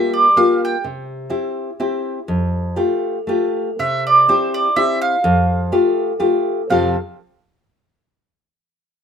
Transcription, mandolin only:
Already playing: E5
0.14 D5
0.37 F5
0.65 G5
3.80 E5
4.07 D5
4.29 C5
4.54 D5
4.76 E5
5.01 F5
6.70 F5

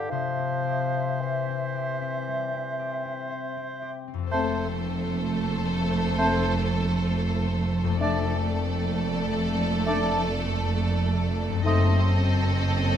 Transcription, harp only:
Already playing: G2 D4 F4 B4
0.11 C3
0.38 C4
0.67 G4
0.94 C4
1.21 C5
1.48 C4
1.75 G4
2.01 C4
2.28 G3
2.53 C4
2.79 G4
3.05 C4
3.31 C5
3.56 C4
3.82 G4
4.07 C4
4.14 F2
4.18 C4
4.23 A4
4.27 C5
7.84 F2
7.88 A3
7.93 A4
7.97 D5
11.48 F#2
11.53 C4
11.57 A4
11.62 D#5

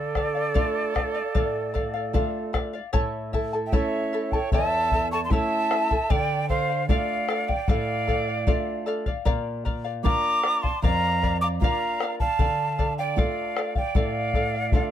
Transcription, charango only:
Already playing: A4 D5 F5
0.16 A4 D5 F5
0.35 D5 F5
0.54 A4 D5 F5
0.94 A4 D5 F5
1.14 D5 F5
1.34 A4 D5 F5
1.74 A4 D5 F5
1.94 D5 F5
2.14 A4 D5 F5
2.53 A4 D5 F5
2.73 D5 F5
2.93 E4 A4 C#5 E5 A5
3.33 E4 A4 E5 A5
3.53 E4 A4 A5
3.73 E4 A4 C#5 E5 A5
4.13 E4 A4 E5 A5
4.33 E4 A4 A5
4.53 E4 A4 C#5 E5 A5
4.93 E4 A4 E5 A5
5.13 E4 A4 A5
5.33 E4 A4 C#5 E5 A5
5.71 E4 A4 E5 A5
5.91 E4 A4 A5
6.10 A4 D5 F5
6.50 A4 D5 F5
6.70 D5 F5
6.89 A4 D5 F5
7.29 A4 D5 F5
7.48 D5 F5
7.69 A4 D5 F5
8.07 A4 D5 F5
8.28 D5 F5
8.47 A4 D5 F5
8.86 A4 D5 F5
9.06 D5 F5
9.25 A#4 D5 F5
9.65 A#4 D5 F5
9.84 D5 F5
10.04 A#4 D5 F5
10.43 A#4 D5 F5
10.63 D5 F5
10.83 A#4 D5 F5
11.22 A#4 D5 F5
11.44 D5 F5
11.64 A#4 D5 F5
12.01 A#4 D5 F5
12.20 D5 F5
12.39 A4 D5 F5
12.78 A4 D5 F5
12.99 D5 F5
13.18 A4 D5 F5
13.57 A4 D5 F5
13.75 D5 F5
13.96 A4 D5 F5
14.35 A4 D5 F5
14.55 D5 F5
14.73 A4 D5 F5

